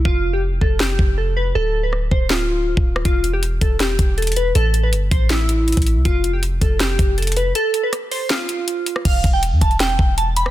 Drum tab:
CC |--------------------------------|--------------------------------|--------------------------------|--------------------------------|
HH |--------------------------------|--------------------------------|x---x---x---x---x---x---xxxxx---|x---x---x---x---x---x---xxxxx---|
SD |----------------o---------------|--------r-------o-------------r-|----------------o---------------|----------------o---------------|
BD |o-----------o-------o-----------|------------o-------------o-----|o-----------o-------o-----------|------------o-------------o-----|

CC |--------------------------------|--------------------------------|x-------------------------------|
HH |x---x---x---x---x---x---xxxxx---|x---x---x---o---x---x---x---x---|x---x---x---x-x-x-------x---x---|
SD |----------------o---------------|--------r-------o-------------r-|----------------o-------------r-|
BD |o-----------o-------o-----------|--------------------------------|o---o-------o-------o-----------|